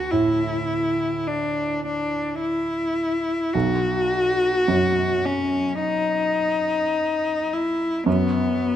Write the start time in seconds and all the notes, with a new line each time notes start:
Already playing: D2 F#4
0.11 A2 E4
1.28 D4
1.86 D4
2.41 E4
3.54 B1 F#4
4.68 F#2
5.25 C#4
5.81 D#4
7.53 E4
8.06 F#2 B3